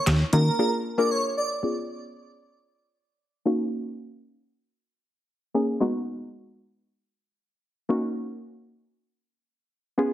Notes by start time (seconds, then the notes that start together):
0.07 D#2, snare, clap, closed hi-hat
0.33 D#3 A#3 C#4 D#4 F#4 A#4, closed hi-hat
0.59 A#3 D4 F4 G#4 A#4
0.98 A#3 D4 F4 G#4 A#4 D5
1.11 C#5
1.37 D5
1.63 B3 C#4 F4 G#4
3.45 A#3 C#4 D#4 F#4
5.54 A#3 C#4 D#4 G#4
5.80 G#3 B3 D#4 F#4
7.89 A#3 C#4 D#4 F#4
9.98 B3 C#4 F4 G#4